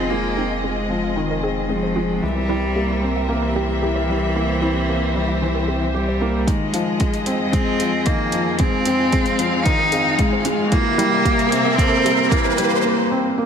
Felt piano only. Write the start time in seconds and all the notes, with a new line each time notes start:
Already playing: D#3 F3 G#3 C4
0.11 G#3
0.37 C4
0.63 G#3
0.90 F3
1.16 D#3
1.43 C4
1.69 G#3
1.96 G#3
2.23 E3
2.49 G3
2.75 A#3
3.02 C4
3.29 A#3
3.55 G3
3.82 E3
4.09 G3
4.36 A#3
4.62 C4
4.89 A#3
5.15 G3
5.42 E3
5.68 C4
5.94 G4
6.21 A#3
6.47 D#3
6.73 F3
7.00 G#3
7.26 C4
7.53 G#3
7.80 F3
8.06 D#3
8.33 F3
8.59 G#3
8.86 C4
9.12 G#3
9.39 F3
9.66 D#3
9.92 C4
10.19 G#3
10.45 G#3
10.72 E3
10.98 G3
11.25 A#3
11.52 C4
11.78 A#3
12.05 G3
12.31 E3
12.58 G3
12.84 A#3
13.11 C4
13.38 A#3